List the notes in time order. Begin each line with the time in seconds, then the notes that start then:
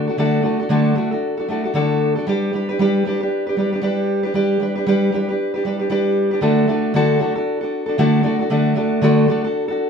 0.07 D4 F#4 A4
0.17 D3 A3 D4 F#4 A4
0.42 A3 D4 F#4 A4
0.60 D4 F#4 A4
0.69 D3 A3 D4 F#4 A4
0.95 A3 D4 F#4 A4
1.11 D4 F#4 A4
1.37 D4 F#4 A4
1.48 A3 D4 F#4 A4
1.64 D4 F#4 A4
1.74 D3 A3 D4 F#4 A4
2.15 D4 F#4 A4
2.27 G3 D4 G4 B4
2.53 G3 D4 G4 B4
2.69 D4 G4 B4
2.79 G3 D4 G4 B4
3.05 G3 D4 G4 B4
3.20 D4 G4 B4
3.47 D4 G4 B4
3.57 G3 D4 G4 B4
3.72 D4 G4 B4
3.81 G3 D4 G4 B4
4.23 D4 G4 B4
4.34 G3 D4 G4 B4
4.60 G3 D4 G4 B4
4.75 D4 G4 B4
4.87 G3 D4 G4 B4
5.12 G3 D4 G4 B4
5.29 D4 G4 B4
5.54 D4 G4 B4
5.65 G3 D4 G4 B4
5.79 D4 G4 B4
5.90 G3 D4 G4 B4
6.31 D4 G4 B4
6.41 D3 A3 D4 F#4 A4
6.68 A3 D4 F#4 A4
6.94 D3 A3 D4 F#4 A4
7.19 A3 D4 F#4 A4
7.35 D4 F#4 A4
7.61 D4 F#4 A4
7.86 D4 F#4 A4
7.98 D3 A3 D4 F#4 A4
8.23 A3 D4 F#4 A4
8.39 D4 F#4 A4
8.50 D3 A3 D4 F#4 A4
8.75 A3 D4 F#4 A4
9.01 D3 A3 D4 F#4 A4
9.28 A3 D4 F#4 A4
9.44 D4 F#4 A4
9.68 D4 F#4 A4